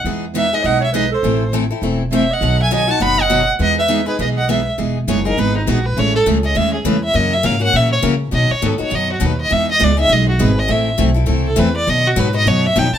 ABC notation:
X:1
M:4/4
L:1/16
Q:"Swing" 1/4=203
K:E
V:1 name="Violin"
z4 e2 d2 f2 e2 d2 =c2- | =c4 z8 e2 f2- | f2 g2 g2 a2 b2 f4 z2 | d2 e4 B2 d2 f2 e3 z |
z4 c2 ^A2 B2 D2 F2 B2 | c2 A2 z2 d2 e2 G2 B2 e2 | d2 e2 =f2 ^f2 e2 c2 z4 | d2 c2 A2 c2 d2 F2 B2 d2 |
e2 d2 =d2 e2 ^d2 F2 B2 d2 | e4 z6 A2 B2 =d2 | d2 F2 B2 d2 c2 e2 =g2 z2 |]
V:2 name="Clarinet"
z4 B2 B2 d2 c2 B2 A2- | A4 z8 =c2 d2- | d2 e2 d2 f2 f2 d4 z2 | B2 B4 G2 B2 d2 B3 z |
z16 | z16 | z16 | z16 |
z16 | z16 | z16 |]
V:3 name="Steel-string acoustic guitar"
[E,B,DG]2 z2 [E,B,DG]2 [B,DG]2 [E,B,DG]2 z2 [E,B,DG]2 z2 | [E,A,=CEA]2 z2 [E,A,CEA]2 [CEA]2 [E,A,CEA]2 z2 [E,A,CEA]2 z2 | [B,,F,B,DF]2 z2 [B,,F,B,DF]2 [B,DF]2 [B,,F,B,DF]2 z2 [B,,F,B,DF]2 z2 | [E,B,DG]2 z2 [E,B,DG]2 [B,DG]2 [E,B,DG]2 z2 [E,B,DG]2 z2 |
[E,B,DG]2 z2 [E,B,DG]2 [B,DG]2 [E,B,DG]2 z2 [E,B,DG]2 z2 | [C,E,A,CG]2 z2 [C,E,A,CG]2 [A,CG]2 [C,E,A,CG]2 z2 [C,E,A,CG]2 z2 | [C,E,^A,CF]2 z2 [C,E,A,CF]2 [A,CF]2 [C,E,A,CF]2 z2 [C,E,A,CF]2 z2 | [B,,F,B,DF]2 z2 [B,,F,B,DF]2 [B,DF]2 [B,,F,B,DF]2 z2 [B,,F,B,DF]2 z2 |
[E,B,DG]2 z2 [E,B,DG]2 [B,DG]2 [E,B,DG]2 z2 [E,B,DG]2 z2 | [E,A,=CEA]2 z2 [E,A,CEA]2 [CEA]2 [E,A,CEA]2 z2 [E,A,CEA]2 z2 | [B,,F,B,DF]2 z2 [B,,F,B,DF]2 [B,DF]2 [B,,F,B,DF]2 z2 [B,,F,B,DF]2 z2 |]
V:4 name="Steel-string acoustic guitar"
[E,G,B,DG]2 z2 [E,G,B,DG]2 z2 [E,G,B,DG]2 z2 [E,G,B,DG]2 z2 | [E,A,=CEA]2 z2 [E,A,CEA]2 z2 [E,A,CEA]2 z2 [E,A,CEA]2 z2 | [B,,D,F,B,DB]2 z2 [B,,D,F,B,DB]2 z2 [B,,D,F,B,DB]2 z2 [B,,D,F,B,DB]2 z2 | [E,G,B,DG]2 z2 [E,G,B,DG]2 z2 [E,G,B,DG]2 z2 [E,G,B,DG]2 z2 |
[E,G,B,DG]2 z2 [E,G,B,DG]2 z2 [E,G,B,DG]2 z2 [E,G,B,DG]2 z2 | [E,G,CEA]2 z2 [E,G,CEA]2 z2 [E,G,CEA]2 z2 [E,G,CEA]2 z2 | [F,CE^A]2 z2 [F,CEA]2 z2 [F,CEA]2 z2 [F,CEA]2 z2 | [B,,D,F,B,DB]2 z2 [B,,D,F,B,DB]2 z2 [B,,D,F,B,DB]2 z2 [B,,D,F,B,DB]2 z2 |
[E,G,B,DG]2 z2 [E,G,B,DG]2 z2 [E,G,B,DG]2 z2 [E,G,B,DG]2 z2 | [E,A,=CEA]2 z2 [E,A,CEA]2 z2 [E,A,CEA]2 z2 [E,A,CEA]2 z2 | [B,,D,F,B,DB]2 z2 [B,,D,F,B,DB]2 z2 [B,,D,F,B,DB]2 z2 [B,,D,F,B,DB]2 z2 |]
V:5 name="Upright bass" clef=bass
E,,8 B,,,8 | A,,,8 E,,,8 | B,,,8 F,,,8 | E,,8 B,,,8 |
E,,,4 F,,,4 G,,,4 ^A,,,4 | A,,,4 C,,4 D,,4 E,,4 | F,,4 G,,4 ^A,,4 C,4 | B,,2 z2 G,,2 z2 F,,4 D,,4 |
E,,4 C,,4 B,,,4 G,,,4 | A,,,4 B,,,4 =C,,4 E,,4 | B,,4 G,,4 F,,4 =F,,2 z2 |]